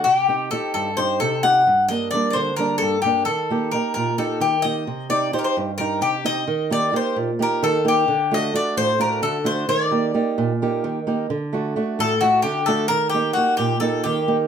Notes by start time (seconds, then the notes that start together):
0.04 C3 F#4
0.15 G4
0.29 C4 D#4 G4
0.51 C4 D#4 G4 A4
0.74 G2 A4
0.97 C4 D#4 G4 C5
1.20 C3 A4
1.43 C4 D#4 G4 F#5
1.67 G2
1.88 G3 A#3 D4 D#5
2.11 G3 A#3 D4 D5
2.30 C5 D5
2.35 D3
2.56 G3 A#3 D4 A#4
2.78 A4
2.82 G2
3.02 G3 A#3 D4 G4
3.25 D#3 A4
3.50 A#3 D#4 G4
3.71 A#3 D#4 G4 A#4
3.94 A#2 A#4
4.18 A#3 D#4 G4 A4
4.40 D#3 G4
4.62 A#3 D#4 G4 D#5
4.87 C3
5.09 C4 D#4 G4 D5
5.33 C4 D#4 G4 C5
5.39 A#4
5.44 C5
5.57 G2
5.78 C4 D#4 G4 A#4
6.01 C3 G4
6.24 C4 D#4 G4 D#5
6.47 D#3
6.70 A#3 D#4 G4 D5
6.93 A#3 D#4 G4 C5
7.16 A#2
7.39 A#3 D#4 G4 A#4
7.63 D#3 A4
7.85 A#3 D#4 G4
8.08 D3
8.31 A3 D4 F#4 D#5
8.53 A3 D4 F#4 D5
8.77 A2 C5
8.99 A3 D4 F#4 A#4
9.22 D3 A4
9.44 A3 D4 F#4 C5
9.69 D#3 D5
9.91 A#3 D#4 G4
10.14 A#3 D#4 G4
10.38 A#2
10.62 A#3 D#4 G4
10.84 D#3
11.07 A#3 D#4 G4
11.30 D3
11.53 A3 D4 F#4
11.76 A3 D4 F#4
11.99 A2 A4
12.21 A3 D4 F#4
12.42 D3 G4
12.66 A3 D4 F#4 A4
12.88 D#3 A#4
13.10 G4
13.14 A#3 D#4 G4
13.33 A#3 D#4 F#4 G4
13.57 A#2 G4
13.80 A#3 D#4 G4 A4
14.04 D#3 G4
14.28 A#3 D#4 G4